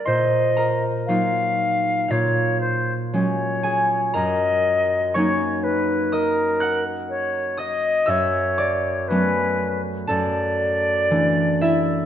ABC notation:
X:1
M:4/4
L:1/16
Q:1/4=59
K:F#phr
V:1 name="Flute"
_e4 =f4 c2 =c2 ^c4 | [K:Blyd] d4 c2 B2 A4 c2 d2 | c4 B3 z =d8 |]
V:2 name="Harp"
[_B=c_b=c']2 [Bb]6 [=F=f]6 [^G^g]2 | [K:Blyd] [Aa]4 [cc']4 [dd']2 [ff']4 [dd']2 | [=e=e']2 [=d=d']6 [=A=a]6 [=Ee]2 |]
V:3 name="Harp"
[_B,,_B,=F]4 [_G,B,_EF]4 ^A,,4 [^F,^G,C]4 | [K:Blyd] F,,4 [F,A,CD]12 | F,,4 [F,=A,B,C]4 F,,4 [=E,A,=D]4 |]